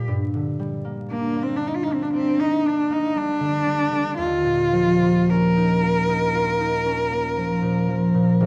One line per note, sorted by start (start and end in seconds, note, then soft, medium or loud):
0.00 0.12 A#2 soft
0.00 0.58 G3 soft
0.00 0.83 A#3 soft
0.00 1.09 D4 soft
0.00 0.13 F4 soft
0.08 3.98 G2 medium
0.34 3.39 D3 soft
0.59 3.14 G3 soft
0.85 1.35 A#3 soft
1.10 1.44 A#3 medium
1.10 1.60 D4 soft
1.36 1.86 A#3 soft
1.43 1.58 C4 medium
1.56 1.68 D4 medium
1.61 2.12 D4 soft
1.67 1.77 D#4 soft
1.75 1.85 F4 medium
1.83 2.37 A#3 medium
1.83 1.95 D#4 medium
1.93 2.04 C4 medium
2.03 2.13 D4 medium
2.13 2.42 C4 medium
2.13 2.63 D4 medium
2.38 2.88 A#3 soft
2.38 2.67 D#4 medium
2.65 4.22 D4 soft
2.65 2.94 D4 medium
2.90 5.01 A#3 medium
2.90 3.18 D#4 medium
3.15 3.65 G3 soft
3.15 4.17 D4 medium
3.40 3.90 D3 soft
3.66 4.22 G3 soft
3.92 4.22 D3 soft
4.17 8.08 D#2 medium
4.17 5.32 F4 medium
4.44 7.61 A#2 soft
4.72 7.36 F3 medium
5.02 7.10 A#3 soft
5.30 6.84 C#4 soft
5.30 8.41 A#4 medium
5.56 6.07 D#4 medium
5.83 6.34 F4 medium
6.09 6.59 D#4 medium
6.35 8.45 F4 medium
6.60 8.46 D#4 medium
6.85 8.45 C#4 medium
7.11 8.46 A#3 medium
7.37 7.86 F3 soft
7.62 8.13 A#2 soft
7.88 8.45 F3 medium
8.14 8.45 A#2 medium
8.40 8.46 G#1 medium